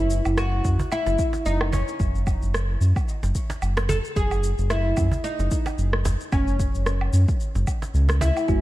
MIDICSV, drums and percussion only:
0, 0, Header, 1, 3, 480
1, 0, Start_track
1, 0, Tempo, 540541
1, 1774, Time_signature, 4, 2, 24, 8
1, 7646, End_track
2, 0, Start_track
2, 0, Title_t, "Cajon"
2, 705, Note_on_c, 9, 36, 78
2, 794, Note_off_c, 9, 36, 0
2, 945, Note_on_c, 9, 38, 63
2, 1034, Note_off_c, 9, 38, 0
2, 1181, Note_on_c, 9, 38, 72
2, 1270, Note_off_c, 9, 38, 0
2, 1537, Note_on_c, 9, 36, 79
2, 1538, Note_on_c, 9, 38, 76
2, 1625, Note_off_c, 9, 36, 0
2, 1627, Note_off_c, 9, 38, 0
2, 2869, Note_on_c, 9, 38, 64
2, 2958, Note_off_c, 9, 38, 0
2, 3107, Note_on_c, 9, 38, 89
2, 3196, Note_off_c, 9, 38, 0
2, 3348, Note_on_c, 9, 38, 80
2, 3437, Note_off_c, 9, 38, 0
2, 3457, Note_on_c, 9, 36, 97
2, 3546, Note_off_c, 9, 36, 0
2, 4542, Note_on_c, 9, 36, 75
2, 4631, Note_off_c, 9, 36, 0
2, 4793, Note_on_c, 9, 38, 53
2, 4882, Note_off_c, 9, 38, 0
2, 5024, Note_on_c, 9, 38, 78
2, 5113, Note_off_c, 9, 38, 0
2, 5374, Note_on_c, 9, 36, 87
2, 5375, Note_on_c, 9, 38, 84
2, 5463, Note_off_c, 9, 36, 0
2, 5463, Note_off_c, 9, 38, 0
2, 6708, Note_on_c, 9, 38, 53
2, 6796, Note_off_c, 9, 38, 0
2, 6946, Note_on_c, 9, 38, 70
2, 7034, Note_off_c, 9, 38, 0
2, 7180, Note_on_c, 9, 38, 72
2, 7269, Note_off_c, 9, 38, 0
2, 7291, Note_on_c, 9, 36, 99
2, 7380, Note_off_c, 9, 36, 0
2, 7646, End_track
3, 0, Start_track
3, 0, Title_t, "Drums"
3, 91, Note_on_c, 9, 82, 69
3, 180, Note_off_c, 9, 82, 0
3, 225, Note_on_c, 9, 77, 67
3, 227, Note_on_c, 9, 82, 31
3, 314, Note_off_c, 9, 77, 0
3, 315, Note_off_c, 9, 82, 0
3, 334, Note_on_c, 9, 37, 73
3, 335, Note_on_c, 9, 82, 37
3, 423, Note_off_c, 9, 37, 0
3, 424, Note_off_c, 9, 82, 0
3, 575, Note_on_c, 9, 36, 89
3, 575, Note_on_c, 9, 82, 68
3, 664, Note_off_c, 9, 36, 0
3, 664, Note_off_c, 9, 82, 0
3, 708, Note_on_c, 9, 82, 31
3, 797, Note_off_c, 9, 82, 0
3, 813, Note_on_c, 9, 77, 73
3, 815, Note_on_c, 9, 82, 39
3, 902, Note_off_c, 9, 77, 0
3, 903, Note_off_c, 9, 82, 0
3, 949, Note_on_c, 9, 82, 28
3, 1038, Note_off_c, 9, 82, 0
3, 1054, Note_on_c, 9, 82, 70
3, 1055, Note_on_c, 9, 36, 88
3, 1143, Note_off_c, 9, 82, 0
3, 1144, Note_off_c, 9, 36, 0
3, 1189, Note_on_c, 9, 82, 30
3, 1277, Note_off_c, 9, 82, 0
3, 1294, Note_on_c, 9, 82, 41
3, 1383, Note_off_c, 9, 82, 0
3, 1428, Note_on_c, 9, 37, 81
3, 1428, Note_on_c, 9, 77, 82
3, 1517, Note_off_c, 9, 37, 0
3, 1517, Note_off_c, 9, 77, 0
3, 1537, Note_on_c, 9, 82, 70
3, 1626, Note_off_c, 9, 82, 0
3, 1671, Note_on_c, 9, 82, 30
3, 1760, Note_off_c, 9, 82, 0
3, 1775, Note_on_c, 9, 36, 105
3, 1776, Note_on_c, 9, 82, 44
3, 1864, Note_off_c, 9, 36, 0
3, 1865, Note_off_c, 9, 82, 0
3, 1912, Note_on_c, 9, 82, 29
3, 2001, Note_off_c, 9, 82, 0
3, 2014, Note_on_c, 9, 77, 69
3, 2016, Note_on_c, 9, 36, 94
3, 2016, Note_on_c, 9, 82, 73
3, 2103, Note_off_c, 9, 77, 0
3, 2104, Note_off_c, 9, 36, 0
3, 2104, Note_off_c, 9, 82, 0
3, 2152, Note_on_c, 9, 82, 33
3, 2241, Note_off_c, 9, 82, 0
3, 2260, Note_on_c, 9, 37, 71
3, 2261, Note_on_c, 9, 82, 41
3, 2348, Note_off_c, 9, 37, 0
3, 2350, Note_off_c, 9, 82, 0
3, 2499, Note_on_c, 9, 82, 65
3, 2588, Note_off_c, 9, 82, 0
3, 2630, Note_on_c, 9, 36, 107
3, 2631, Note_on_c, 9, 77, 76
3, 2633, Note_on_c, 9, 82, 32
3, 2719, Note_off_c, 9, 36, 0
3, 2720, Note_off_c, 9, 77, 0
3, 2721, Note_off_c, 9, 82, 0
3, 2739, Note_on_c, 9, 82, 42
3, 2828, Note_off_c, 9, 82, 0
3, 2871, Note_on_c, 9, 82, 30
3, 2960, Note_off_c, 9, 82, 0
3, 2976, Note_on_c, 9, 82, 76
3, 2977, Note_on_c, 9, 36, 59
3, 3065, Note_off_c, 9, 36, 0
3, 3065, Note_off_c, 9, 82, 0
3, 3112, Note_on_c, 9, 82, 31
3, 3201, Note_off_c, 9, 82, 0
3, 3216, Note_on_c, 9, 77, 73
3, 3217, Note_on_c, 9, 82, 45
3, 3305, Note_off_c, 9, 77, 0
3, 3306, Note_off_c, 9, 82, 0
3, 3351, Note_on_c, 9, 37, 80
3, 3440, Note_off_c, 9, 37, 0
3, 3458, Note_on_c, 9, 82, 81
3, 3547, Note_off_c, 9, 82, 0
3, 3593, Note_on_c, 9, 82, 31
3, 3682, Note_off_c, 9, 82, 0
3, 3697, Note_on_c, 9, 36, 105
3, 3699, Note_on_c, 9, 82, 44
3, 3786, Note_off_c, 9, 36, 0
3, 3787, Note_off_c, 9, 82, 0
3, 3830, Note_on_c, 9, 77, 75
3, 3832, Note_on_c, 9, 82, 30
3, 3919, Note_off_c, 9, 77, 0
3, 3920, Note_off_c, 9, 82, 0
3, 3939, Note_on_c, 9, 82, 77
3, 4028, Note_off_c, 9, 82, 0
3, 4071, Note_on_c, 9, 82, 32
3, 4160, Note_off_c, 9, 82, 0
3, 4175, Note_on_c, 9, 37, 70
3, 4177, Note_on_c, 9, 82, 43
3, 4264, Note_off_c, 9, 37, 0
3, 4265, Note_off_c, 9, 82, 0
3, 4413, Note_on_c, 9, 77, 68
3, 4414, Note_on_c, 9, 82, 74
3, 4417, Note_on_c, 9, 36, 106
3, 4501, Note_off_c, 9, 77, 0
3, 4503, Note_off_c, 9, 82, 0
3, 4506, Note_off_c, 9, 36, 0
3, 4553, Note_on_c, 9, 82, 35
3, 4642, Note_off_c, 9, 82, 0
3, 4657, Note_on_c, 9, 82, 43
3, 4746, Note_off_c, 9, 82, 0
3, 4790, Note_on_c, 9, 82, 30
3, 4879, Note_off_c, 9, 82, 0
3, 4896, Note_on_c, 9, 82, 80
3, 4897, Note_on_c, 9, 36, 96
3, 4984, Note_off_c, 9, 82, 0
3, 4986, Note_off_c, 9, 36, 0
3, 5030, Note_on_c, 9, 77, 68
3, 5031, Note_on_c, 9, 82, 33
3, 5118, Note_off_c, 9, 77, 0
3, 5120, Note_off_c, 9, 82, 0
3, 5137, Note_on_c, 9, 82, 45
3, 5226, Note_off_c, 9, 82, 0
3, 5267, Note_on_c, 9, 37, 76
3, 5356, Note_off_c, 9, 37, 0
3, 5374, Note_on_c, 9, 82, 80
3, 5462, Note_off_c, 9, 82, 0
3, 5510, Note_on_c, 9, 82, 31
3, 5598, Note_off_c, 9, 82, 0
3, 5615, Note_on_c, 9, 77, 74
3, 5616, Note_on_c, 9, 36, 109
3, 5616, Note_on_c, 9, 82, 47
3, 5704, Note_off_c, 9, 77, 0
3, 5705, Note_off_c, 9, 36, 0
3, 5705, Note_off_c, 9, 82, 0
3, 5751, Note_on_c, 9, 82, 30
3, 5839, Note_off_c, 9, 82, 0
3, 5856, Note_on_c, 9, 36, 94
3, 5859, Note_on_c, 9, 82, 73
3, 5945, Note_off_c, 9, 36, 0
3, 5947, Note_off_c, 9, 82, 0
3, 5991, Note_on_c, 9, 82, 34
3, 6080, Note_off_c, 9, 82, 0
3, 6095, Note_on_c, 9, 37, 70
3, 6096, Note_on_c, 9, 82, 42
3, 6184, Note_off_c, 9, 37, 0
3, 6185, Note_off_c, 9, 82, 0
3, 6227, Note_on_c, 9, 77, 66
3, 6316, Note_off_c, 9, 77, 0
3, 6333, Note_on_c, 9, 82, 74
3, 6422, Note_off_c, 9, 82, 0
3, 6469, Note_on_c, 9, 36, 112
3, 6469, Note_on_c, 9, 82, 32
3, 6558, Note_off_c, 9, 36, 0
3, 6558, Note_off_c, 9, 82, 0
3, 6574, Note_on_c, 9, 82, 42
3, 6663, Note_off_c, 9, 82, 0
3, 6708, Note_on_c, 9, 82, 31
3, 6797, Note_off_c, 9, 82, 0
3, 6813, Note_on_c, 9, 77, 67
3, 6815, Note_on_c, 9, 82, 76
3, 6816, Note_on_c, 9, 36, 61
3, 6902, Note_off_c, 9, 77, 0
3, 6903, Note_off_c, 9, 82, 0
3, 6904, Note_off_c, 9, 36, 0
3, 6950, Note_on_c, 9, 82, 33
3, 7038, Note_off_c, 9, 82, 0
3, 7056, Note_on_c, 9, 82, 45
3, 7145, Note_off_c, 9, 82, 0
3, 7188, Note_on_c, 9, 37, 80
3, 7190, Note_on_c, 9, 82, 31
3, 7277, Note_off_c, 9, 37, 0
3, 7278, Note_off_c, 9, 82, 0
3, 7297, Note_on_c, 9, 82, 80
3, 7386, Note_off_c, 9, 82, 0
3, 7429, Note_on_c, 9, 77, 68
3, 7431, Note_on_c, 9, 82, 31
3, 7518, Note_off_c, 9, 77, 0
3, 7519, Note_off_c, 9, 82, 0
3, 7534, Note_on_c, 9, 82, 44
3, 7535, Note_on_c, 9, 36, 113
3, 7623, Note_off_c, 9, 82, 0
3, 7624, Note_off_c, 9, 36, 0
3, 7646, End_track
0, 0, End_of_file